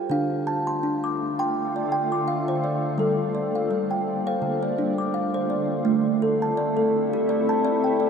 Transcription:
Already playing: kalimba G4
0.10 kalimba D3 D4 F5, ambient pad D3 A3 F4
0.47 kalimba A5
0.67 kalimba C6
0.83 kalimba D4
1.04 kalimba D6
1.39 kalimba G5 C6
1.76 kalimba D5
1.92 kalimba G5
2.12 kalimba D6
2.28 kalimba F5
2.48 kalimba C5
2.64 kalimba D5
2.95 ambient pad G3 A#3 D4, kalimba G3 A4
3.35 kalimba D5
3.55 kalimba F5
3.71 kalimba G3
3.91 kalimba G5
4.27 kalimba C5 F5
4.42 kalimba D3, ambient pad D3 A3 F4
4.63 kalimba D5
4.78 kalimba D4
4.98 kalimba D6
5.14 kalimba F5
5.34 kalimba C5
5.50 kalimba D5
5.85 kalimba A3, ambient pad A3 C4 E4
6.22 kalimba A4
6.42 kalimba A5
6.57 kalimba D5
6.77 kalimba A4
7.13 kalimba G4
7.29 kalimba D5
7.49 kalimba A5
7.65 kalimba D5
7.84 kalimba G5
8.00 kalimba D5

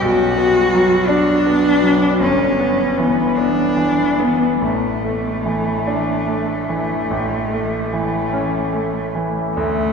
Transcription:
0.02 grand piano B1, cello F#4
0.38 grand piano B3
0.73 grand piano F#3
1.08 cello D4, grand piano D4
1.46 grand piano B3
1.83 grand piano F#3
2.20 grand piano G1, cello C#4
2.60 grand piano B3
2.97 grand piano E3, cello B3
3.35 grand piano B3, cello D4
3.77 grand piano E3
4.19 grand piano B3, cello B3
4.61 grand piano A1, cello A3
5.04 grand piano A3
5.46 grand piano E3
5.87 grand piano D4
6.28 grand piano A3
6.69 grand piano E3
7.11 grand piano A1
7.53 grand piano A3
7.93 grand piano E3
8.32 grand piano C#4
8.73 grand piano A3
9.15 grand piano E3
9.57 grand piano D2, cello A3

